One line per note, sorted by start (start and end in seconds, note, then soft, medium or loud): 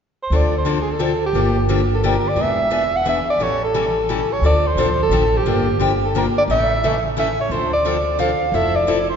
0.23 0.38 C5 medium
0.30 1.13 D2 medium
0.30 0.53 D3 medium
0.30 0.53 F3 soft
0.30 0.53 C4 medium
0.30 0.53 D4 medium
0.30 0.53 A4 medium
0.37 0.55 D5 medium
0.58 0.79 C5 medium
0.65 0.77 D3 medium
0.65 0.77 F3 medium
0.65 0.77 C4 medium
0.65 0.77 D4 medium
0.65 0.77 A4 medium
0.82 0.93 G#4 medium
0.92 1.24 A4 medium
0.99 1.11 D3 medium
0.99 1.11 F3 medium
0.99 1.11 C4 medium
0.99 1.11 D4 medium
0.99 1.11 A4 medium
1.26 1.68 G4 medium
1.33 2.16 G1 medium
1.33 1.55 D3 medium
1.33 1.56 F3 medium
1.33 1.56 A#3 medium
1.33 1.56 D4 medium
1.33 1.56 G4 medium
1.69 1.80 D3 medium
1.69 1.80 F3 medium
1.69 1.80 A#3 medium
1.69 1.80 D4 medium
1.69 1.80 G4 medium
1.94 2.10 A4 medium
2.04 2.14 D3 medium
2.04 2.14 F3 medium
2.04 2.15 A#3 medium
2.04 2.15 D4 medium
2.04 2.15 G4 medium
2.08 2.30 A#4 medium
2.29 2.43 D5 medium
2.36 3.18 E1 medium
2.36 2.57 E3 medium
2.36 2.58 B3 medium
2.36 2.58 D4 medium
2.36 2.58 G#4 medium
2.42 2.98 E5 loud
2.70 2.82 E3 medium
2.70 2.82 B3 medium
2.70 2.82 D4 medium
2.70 2.82 G#4 medium
2.96 3.07 F#5 medium
3.05 3.17 E3 medium
3.05 3.17 B3 medium
3.05 3.17 D4 medium
3.05 3.17 G#4 medium
3.05 3.27 E5 medium
3.30 3.44 D5 medium
3.38 4.21 A1 medium
3.38 3.61 E3 medium
3.38 3.61 G3 medium
3.38 3.61 C#4 medium
3.38 3.61 E4 medium
3.38 3.61 A4 medium
3.43 3.62 C#5 medium
3.64 4.34 A4 medium
3.74 3.85 E3 medium
3.74 3.85 G3 medium
3.74 3.85 C#4 medium
3.74 3.86 E4 medium
3.74 3.86 A4 medium
4.09 4.20 E3 medium
4.09 4.20 G3 medium
4.09 4.20 C#4 medium
4.09 4.20 E4 medium
4.09 4.20 A4 medium
4.33 4.44 C#5 medium
4.41 4.69 D2 medium
4.41 4.64 D3 soft
4.41 4.64 F3 medium
4.41 4.64 C4 medium
4.41 4.64 D4 medium
4.41 4.64 A4 medium
4.46 4.69 D5 medium
4.67 4.99 C5 medium
4.75 5.05 A#1 medium
4.75 4.88 D3 medium
4.75 4.88 F3 medium
4.75 4.88 C4 medium
4.75 4.88 D4 medium
4.75 4.89 A4 medium
5.03 5.39 A4 medium
5.09 5.39 A1 medium
5.09 5.22 D3 medium
5.09 5.22 F3 medium
5.09 5.23 C4 medium
5.09 5.22 D4 medium
5.09 5.23 A4 medium
5.37 5.82 G4 medium
5.43 6.26 G1 medium
5.43 5.66 D3 medium
5.43 5.66 F3 soft
5.43 5.66 A#3 medium
5.43 5.67 D4 medium
5.43 5.67 G4 medium
5.79 5.90 D3 medium
5.79 5.91 F3 medium
5.79 5.91 A#3 medium
5.79 5.91 D4 medium
5.79 5.91 G4 medium
6.04 6.15 A4 medium
6.15 6.25 D3 medium
6.15 6.25 F3 medium
6.15 6.25 A#3 medium
6.15 6.26 D4 medium
6.15 6.26 G4 medium
6.15 6.26 A#4 medium
6.38 6.43 D5 medium
6.48 7.29 A1 medium
6.48 6.69 C#3 medium
6.48 6.69 E3 medium
6.48 6.69 A3 medium
6.48 6.70 C#4 medium
6.48 6.70 A4 medium
6.48 7.01 E5 medium
6.84 6.94 C#3 medium
6.84 6.94 E3 medium
6.84 6.94 A3 medium
6.84 6.94 C#4 medium
6.84 6.94 A4 medium
7.16 7.27 C#3 medium
7.16 7.27 E3 medium
7.16 7.28 A3 medium
7.16 7.28 C#4 medium
7.16 7.28 A4 medium
7.16 7.37 E5 medium
7.41 7.54 C#5 medium
7.49 8.31 D2 medium
7.49 7.71 D3 soft
7.49 7.71 F3 medium
7.49 7.71 C4 medium
7.49 7.71 D4 medium
7.49 7.72 A4 medium
7.49 7.72 C5 medium
7.73 8.16 D5 medium
7.85 7.95 D3 medium
7.85 7.96 F3 medium
7.85 7.96 C4 medium
7.85 7.96 D4 medium
7.85 7.96 A4 medium
8.19 8.29 D3 medium
8.19 8.29 F3 medium
8.19 8.30 C4 medium
8.19 8.30 D4 medium
8.19 8.30 A4 medium
8.19 8.56 F5 medium
8.52 9.16 F1 medium
8.52 8.74 F3 medium
8.52 8.74 C4 medium
8.52 8.74 E4 medium
8.52 8.74 A4 medium
8.52 8.77 E5 medium
8.76 9.09 D5 medium
8.87 8.98 F3 medium
8.87 8.98 C4 medium
8.87 8.98 E4 medium
8.87 8.98 A4 medium
9.10 9.16 C5 medium